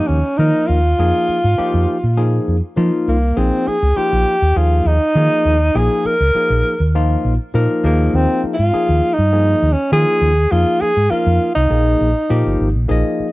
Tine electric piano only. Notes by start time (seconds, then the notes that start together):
Already playing: F3 A#3 D#4 G4
0.39 F3 A#3 D#4 A#4
0.99 F3 A#3 D#4 G#4
1.58 F3 A#3 D#4 G4
2.17 F3 A#3 D#4 G#4
2.76 F3 A#3 D#4 F4
3.36 F3 A#3 D#4 G#4
3.96 F3 A#3 D#4 F4
4.56 F3 A#3 D#4 G#4
5.16 F3 A#3 D#4 G#4
5.74 F3 A#3 D#4 G#4
6.35 F3 A#3 D#4 G#4
6.95 F3 A#3 D#4 F4
7.54 F3 A#3 D#4 A#4
7.84 F3 A#3 D#4 G#4
8.73 F3 A#3 D#4 G#4
9.32 F3 A#3 D#4 G#4
9.92 F3 A#3 D#4 F4
10.51 F3 A#3 D#4 G#4
11.10 F3 A#3 D#4 A#4
11.69 F3 A#3 D#4 G#4
12.29 F3 A#3 D#4 G4
12.88 F3 A#3 D#4 G#4 D#5